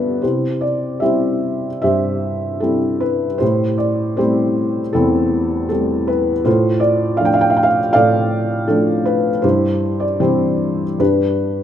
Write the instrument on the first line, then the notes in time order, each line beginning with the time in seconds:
felt piano
Already playing: G2 G3 B3 D4 F4 A4 B4 D5
0.22 C3 E4 G4 C5
0.61 D5
1.00 G3 C4 E4 G4 C5 E5
1.82 G2 G4 C5 E5
2.60 G3 C4 E4 A4
3.00 B4
3.38 A2 E4 G4 C5
3.78 D5
4.17 G3 A3 C4 E4 G4 C5
4.93 E2 C4 E4 A4
5.69 G3 A3 C4 A4
6.08 B4
6.45 A2 F4 A4 C5
6.80 D5
7.17 F3 A3 D4 F5
7.25 G5
7.34 F5
7.41 G5
7.50 F5
7.57 G5
7.63 F5
7.93 A2 A4 D5 F5
8.68 F3 A3 D4 A4
9.05 B4
9.42 G2 E4 G4 C5
10.00 D5
10.20 E3 G3 C4 E4 G4 C5
10.99 G2 D4 G4 B4